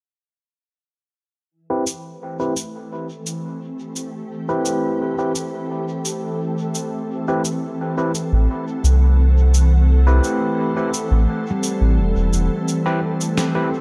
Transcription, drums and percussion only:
0, 0, Header, 1, 2, 480
1, 0, Start_track
1, 0, Tempo, 697674
1, 1045, Time_signature, 4, 2, 24, 8
1, 9499, End_track
2, 0, Start_track
2, 0, Title_t, "Drums"
2, 1283, Note_on_c, 9, 82, 45
2, 1352, Note_off_c, 9, 82, 0
2, 1764, Note_on_c, 9, 82, 46
2, 1833, Note_off_c, 9, 82, 0
2, 2245, Note_on_c, 9, 82, 46
2, 2314, Note_off_c, 9, 82, 0
2, 2723, Note_on_c, 9, 82, 47
2, 2791, Note_off_c, 9, 82, 0
2, 3201, Note_on_c, 9, 82, 46
2, 3270, Note_off_c, 9, 82, 0
2, 3682, Note_on_c, 9, 82, 49
2, 3751, Note_off_c, 9, 82, 0
2, 4162, Note_on_c, 9, 82, 49
2, 4231, Note_off_c, 9, 82, 0
2, 4641, Note_on_c, 9, 82, 50
2, 4710, Note_off_c, 9, 82, 0
2, 5123, Note_on_c, 9, 82, 48
2, 5191, Note_off_c, 9, 82, 0
2, 5604, Note_on_c, 9, 82, 48
2, 5673, Note_off_c, 9, 82, 0
2, 6086, Note_on_c, 9, 82, 48
2, 6154, Note_off_c, 9, 82, 0
2, 6564, Note_on_c, 9, 82, 49
2, 6632, Note_off_c, 9, 82, 0
2, 7043, Note_on_c, 9, 82, 46
2, 7112, Note_off_c, 9, 82, 0
2, 7524, Note_on_c, 9, 82, 47
2, 7593, Note_off_c, 9, 82, 0
2, 8002, Note_on_c, 9, 82, 47
2, 8071, Note_off_c, 9, 82, 0
2, 8483, Note_on_c, 9, 82, 48
2, 8552, Note_off_c, 9, 82, 0
2, 8724, Note_on_c, 9, 82, 39
2, 8793, Note_off_c, 9, 82, 0
2, 9086, Note_on_c, 9, 82, 52
2, 9155, Note_off_c, 9, 82, 0
2, 9202, Note_on_c, 9, 38, 71
2, 9202, Note_on_c, 9, 82, 39
2, 9271, Note_off_c, 9, 38, 0
2, 9271, Note_off_c, 9, 82, 0
2, 9499, End_track
0, 0, End_of_file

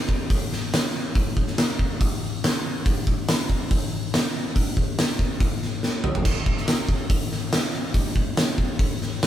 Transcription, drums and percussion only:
0, 0, Header, 1, 2, 480
1, 0, Start_track
1, 0, Tempo, 424628
1, 1304, Time_signature, 4, 2, 24, 8
1, 10477, End_track
2, 0, Start_track
2, 0, Title_t, "Drums"
2, 99, Note_on_c, 9, 36, 78
2, 212, Note_off_c, 9, 36, 0
2, 341, Note_on_c, 9, 36, 110
2, 343, Note_on_c, 9, 46, 58
2, 454, Note_off_c, 9, 36, 0
2, 456, Note_off_c, 9, 46, 0
2, 591, Note_on_c, 9, 38, 33
2, 704, Note_off_c, 9, 38, 0
2, 829, Note_on_c, 9, 46, 58
2, 833, Note_on_c, 9, 38, 111
2, 942, Note_off_c, 9, 46, 0
2, 946, Note_off_c, 9, 38, 0
2, 1304, Note_on_c, 9, 46, 53
2, 1305, Note_on_c, 9, 36, 113
2, 1417, Note_off_c, 9, 46, 0
2, 1418, Note_off_c, 9, 36, 0
2, 1546, Note_on_c, 9, 36, 87
2, 1659, Note_off_c, 9, 36, 0
2, 1665, Note_on_c, 9, 38, 33
2, 1778, Note_off_c, 9, 38, 0
2, 1785, Note_on_c, 9, 46, 55
2, 1789, Note_on_c, 9, 38, 107
2, 1898, Note_off_c, 9, 46, 0
2, 1902, Note_off_c, 9, 38, 0
2, 2027, Note_on_c, 9, 36, 79
2, 2140, Note_off_c, 9, 36, 0
2, 2269, Note_on_c, 9, 36, 110
2, 2269, Note_on_c, 9, 46, 58
2, 2382, Note_off_c, 9, 36, 0
2, 2382, Note_off_c, 9, 46, 0
2, 2756, Note_on_c, 9, 46, 55
2, 2761, Note_on_c, 9, 38, 110
2, 2870, Note_off_c, 9, 46, 0
2, 2874, Note_off_c, 9, 38, 0
2, 3230, Note_on_c, 9, 46, 62
2, 3231, Note_on_c, 9, 36, 116
2, 3343, Note_off_c, 9, 46, 0
2, 3345, Note_off_c, 9, 36, 0
2, 3470, Note_on_c, 9, 36, 93
2, 3583, Note_off_c, 9, 36, 0
2, 3710, Note_on_c, 9, 46, 62
2, 3715, Note_on_c, 9, 38, 116
2, 3823, Note_off_c, 9, 46, 0
2, 3828, Note_off_c, 9, 38, 0
2, 3952, Note_on_c, 9, 36, 74
2, 4065, Note_off_c, 9, 36, 0
2, 4193, Note_on_c, 9, 36, 114
2, 4193, Note_on_c, 9, 46, 58
2, 4306, Note_off_c, 9, 36, 0
2, 4306, Note_off_c, 9, 46, 0
2, 4675, Note_on_c, 9, 46, 61
2, 4679, Note_on_c, 9, 38, 107
2, 4788, Note_off_c, 9, 46, 0
2, 4792, Note_off_c, 9, 38, 0
2, 5153, Note_on_c, 9, 36, 105
2, 5157, Note_on_c, 9, 46, 59
2, 5266, Note_off_c, 9, 36, 0
2, 5270, Note_off_c, 9, 46, 0
2, 5391, Note_on_c, 9, 36, 90
2, 5504, Note_off_c, 9, 36, 0
2, 5633, Note_on_c, 9, 46, 59
2, 5637, Note_on_c, 9, 38, 114
2, 5746, Note_off_c, 9, 46, 0
2, 5750, Note_off_c, 9, 38, 0
2, 5869, Note_on_c, 9, 36, 78
2, 5982, Note_off_c, 9, 36, 0
2, 6109, Note_on_c, 9, 36, 107
2, 6109, Note_on_c, 9, 46, 55
2, 6222, Note_off_c, 9, 36, 0
2, 6223, Note_off_c, 9, 46, 0
2, 6358, Note_on_c, 9, 38, 29
2, 6471, Note_off_c, 9, 38, 0
2, 6592, Note_on_c, 9, 38, 59
2, 6705, Note_off_c, 9, 38, 0
2, 6825, Note_on_c, 9, 45, 91
2, 6938, Note_off_c, 9, 45, 0
2, 6952, Note_on_c, 9, 43, 82
2, 7065, Note_off_c, 9, 43, 0
2, 7065, Note_on_c, 9, 49, 98
2, 7066, Note_on_c, 9, 36, 110
2, 7178, Note_off_c, 9, 49, 0
2, 7179, Note_off_c, 9, 36, 0
2, 7306, Note_on_c, 9, 36, 95
2, 7419, Note_off_c, 9, 36, 0
2, 7433, Note_on_c, 9, 38, 32
2, 7545, Note_on_c, 9, 46, 62
2, 7546, Note_off_c, 9, 38, 0
2, 7550, Note_on_c, 9, 38, 109
2, 7658, Note_off_c, 9, 46, 0
2, 7663, Note_off_c, 9, 38, 0
2, 7783, Note_on_c, 9, 36, 85
2, 7896, Note_off_c, 9, 36, 0
2, 8024, Note_on_c, 9, 36, 114
2, 8026, Note_on_c, 9, 46, 67
2, 8137, Note_off_c, 9, 36, 0
2, 8139, Note_off_c, 9, 46, 0
2, 8270, Note_on_c, 9, 38, 31
2, 8383, Note_off_c, 9, 38, 0
2, 8504, Note_on_c, 9, 46, 60
2, 8508, Note_on_c, 9, 38, 114
2, 8617, Note_off_c, 9, 46, 0
2, 8621, Note_off_c, 9, 38, 0
2, 8978, Note_on_c, 9, 46, 59
2, 8979, Note_on_c, 9, 36, 104
2, 9091, Note_off_c, 9, 46, 0
2, 9092, Note_off_c, 9, 36, 0
2, 9220, Note_on_c, 9, 36, 87
2, 9333, Note_off_c, 9, 36, 0
2, 9462, Note_on_c, 9, 46, 57
2, 9466, Note_on_c, 9, 38, 118
2, 9575, Note_off_c, 9, 46, 0
2, 9579, Note_off_c, 9, 38, 0
2, 9700, Note_on_c, 9, 36, 77
2, 9813, Note_off_c, 9, 36, 0
2, 9940, Note_on_c, 9, 36, 108
2, 9944, Note_on_c, 9, 46, 61
2, 10053, Note_off_c, 9, 36, 0
2, 10057, Note_off_c, 9, 46, 0
2, 10192, Note_on_c, 9, 38, 32
2, 10305, Note_off_c, 9, 38, 0
2, 10428, Note_on_c, 9, 46, 58
2, 10432, Note_on_c, 9, 38, 110
2, 10477, Note_off_c, 9, 38, 0
2, 10477, Note_off_c, 9, 46, 0
2, 10477, End_track
0, 0, End_of_file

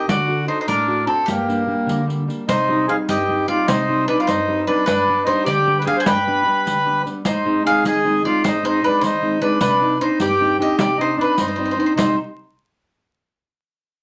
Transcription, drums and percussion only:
0, 0, Header, 1, 2, 480
1, 0, Start_track
1, 0, Key_signature, -3, "minor"
1, 0, Tempo, 398406
1, 94, Time_signature, 6, 3, 24, 8
1, 9216, Tempo, 392927
1, 17007, End_track
2, 0, Start_track
2, 0, Title_t, "Riq"
2, 108, Note_on_c, 9, 54, 69
2, 228, Note_off_c, 9, 54, 0
2, 825, Note_on_c, 9, 54, 43
2, 945, Note_off_c, 9, 54, 0
2, 1542, Note_on_c, 9, 54, 53
2, 1662, Note_off_c, 9, 54, 0
2, 1804, Note_on_c, 9, 54, 17
2, 1925, Note_off_c, 9, 54, 0
2, 2280, Note_on_c, 9, 54, 45
2, 2400, Note_off_c, 9, 54, 0
2, 2531, Note_on_c, 9, 54, 20
2, 2652, Note_off_c, 9, 54, 0
2, 2770, Note_on_c, 9, 54, 19
2, 2891, Note_off_c, 9, 54, 0
2, 2997, Note_on_c, 9, 54, 59
2, 3118, Note_off_c, 9, 54, 0
2, 3718, Note_on_c, 9, 54, 47
2, 3839, Note_off_c, 9, 54, 0
2, 4437, Note_on_c, 9, 54, 68
2, 4557, Note_off_c, 9, 54, 0
2, 5161, Note_on_c, 9, 54, 53
2, 5281, Note_off_c, 9, 54, 0
2, 5871, Note_on_c, 9, 54, 59
2, 5992, Note_off_c, 9, 54, 0
2, 6597, Note_on_c, 9, 54, 51
2, 6718, Note_off_c, 9, 54, 0
2, 7303, Note_on_c, 9, 54, 67
2, 7424, Note_off_c, 9, 54, 0
2, 8035, Note_on_c, 9, 54, 52
2, 8156, Note_off_c, 9, 54, 0
2, 8515, Note_on_c, 9, 54, 21
2, 8636, Note_off_c, 9, 54, 0
2, 8735, Note_on_c, 9, 54, 59
2, 8855, Note_off_c, 9, 54, 0
2, 9465, Note_on_c, 9, 54, 47
2, 9587, Note_off_c, 9, 54, 0
2, 10187, Note_on_c, 9, 54, 60
2, 10309, Note_off_c, 9, 54, 0
2, 10913, Note_on_c, 9, 54, 48
2, 11035, Note_off_c, 9, 54, 0
2, 11607, Note_on_c, 9, 54, 64
2, 11729, Note_off_c, 9, 54, 0
2, 12330, Note_on_c, 9, 54, 52
2, 12452, Note_off_c, 9, 54, 0
2, 13049, Note_on_c, 9, 54, 74
2, 13171, Note_off_c, 9, 54, 0
2, 13770, Note_on_c, 9, 54, 56
2, 13893, Note_off_c, 9, 54, 0
2, 14512, Note_on_c, 9, 54, 78
2, 14634, Note_off_c, 9, 54, 0
2, 17007, End_track
0, 0, End_of_file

